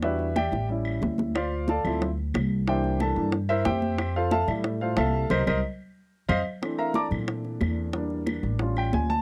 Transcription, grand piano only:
<<
  \new Staff \with { instrumentName = "Grand piano" } { \time 4/4 \key f \major \tempo 4 = 182 <e' g' b' e''>4 <g' d'' e'' g''>4 r2 | <f' c'' d'' f''>4 <a' d'' f'' a''>4 r2 | <g' c'' e'' g''>4 <a' a''>4 r8 <e' bes' c'' e''>8 <g' c'' e'' g''>4~ | <g' c'' e'' g''>8 <f' a' c'' f''>8 <a' e'' f'' a''>8 r4 <f' a' c'' f''>8 <a' e'' f'' a''>4 |
<bes' c'' ees''>8 <bes' c'' ees''>8 r2 <c'' ees'' f''>8 r8 | r8 <bes' e'' f'' bes''>8 <d'' a'' bes'' d'''>8 r2 r8 | r2 r8 g''8 aes''8 a''8 | }
  \new Staff \with { instrumentName = "Grand piano" } { \time 4/4 \key f \major <g d' ges'>8 r4. <g cis' e'>2 | r4. <f c' e'>8 r2 | <e bes d'>4. <e bes d'>8 r2 | r4. <g a e'>4. r4 |
r1 | <e a c' d'>1 | <g bes d'>2 <g cis' eis'>4. r8 | }
>>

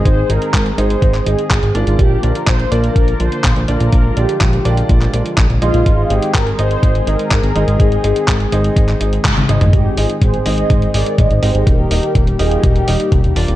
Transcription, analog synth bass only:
\new Staff \with { instrumentName = "Analog synth bass" } { \clef bass \time 4/4 \key aes \lydian \tempo 4 = 124 aes,,16 r16 aes,,16 r16 aes,,16 r16 aes,,16 r16 aes,,16 r16 aes,,16 r16 aes,,16 aes,,16 aes,,16 aes,,16 | bes,,16 r16 bes,,16 r16 bes,,16 r16 bes,,16 r16 bes,,16 r16 bes,,16 r16 bes,,16 bes,,16 bes,,16 bes,,16 | bes,,16 r16 bes,,16 r16 bes,,16 r16 bes,,16 r16 bes,,16 r16 bes,,16 r16 bes,,16 bes,,16 bes,,16 bes,,16 | aes,,16 r16 aes,,16 r16 aes,,16 r16 aes,,16 r16 aes,,16 r16 aes,,16 r16 aes,,16 aes,,16 aes,,16 aes,,16 |
aes,,16 r16 aes,,16 r16 aes,,16 r16 aes,,16 r16 aes,,16 r16 aes,,16 r16 aes,,16 aes,,16 aes,,16 aes,,16 | aes,,16 r16 aes,,16 r16 aes,,16 r16 aes,,16 r16 aes,,16 r16 aes,,16 r16 aes,,16 aes,,16 aes,,16 aes,,16 | ees,,16 r16 ees,,16 r16 ees,,16 r16 ees,,16 r16 ees,,16 r16 ees,,16 r16 ees,,16 ees,,16 ees,,16 ees,,16 | }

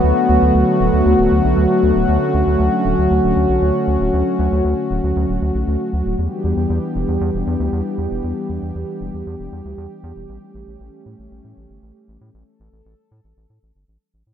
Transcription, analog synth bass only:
\new Staff \with { instrumentName = "Analog synth bass" } { \clef bass \time 4/4 \key d \major \tempo 4 = 117 d,16 r16 d,16 d,16 d,16 r16 d,,16 d,16 d,16 d,,16 d,16 b,,16 d,16 r16 d,16 d,,16 | d,16 r16 d,16 d,16 d,16 r16 d,,16 d,16 d,16 d,,16 d,16 b,,16 d,16 r16 d,16 d,,16 | d,16 r16 d,16 d,16 d,16 r16 d,,16 d,16 d,16 d,,16 d,16 b,,16 d,16 r16 d,16 d,,16 | e,16 r16 e,16 e,16 e,16 r16 e,,16 e,16 e,16 e,,16 e,16 d,16 e,16 r16 e,16 e,,16 |
e,16 r16 e,16 e,16 e,16 r16 e,,16 e,16 e,16 e,,16 e,16 d,16 e,16 r16 e,16 e,,16 | a,,16 r16 a,,16 a,,16 a,,16 r16 a,16 a,,16 a,,16 a,16 a,,16 g,,16 a,,16 r16 a,,16 a,16 | a,,16 r16 a,,16 a,,16 a,,16 r16 a,16 a,,16 a,,16 a,16 a,,16 g,,16 a,,16 r16 a,,16 a,16 | }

